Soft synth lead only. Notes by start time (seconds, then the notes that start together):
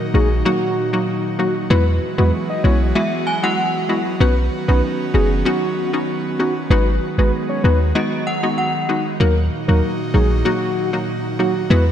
0.14 G#4
0.45 F#4
1.39 F#4
1.70 B4
2.18 B4
2.50 D#5
2.64 C#5
4.21 B4
4.68 B4
5.14 G#4
5.45 F#4
6.39 F#4
6.71 B4
7.18 B4
7.49 C#5
7.64 B4
9.20 A#4
9.68 A#4
10.14 G#4
10.45 F#4
11.39 F#4
11.70 B4